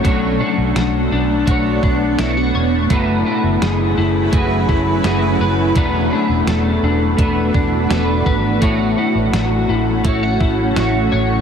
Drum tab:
HH |x-x-x-x-|x-x-x-x-|x-x-x-x-|x-x-x-x-|
SD |--o---o-|--o---o-|--o---o-|--o---o-|
BD |o---oo--|o---oo--|o---oo-o|o---oo--|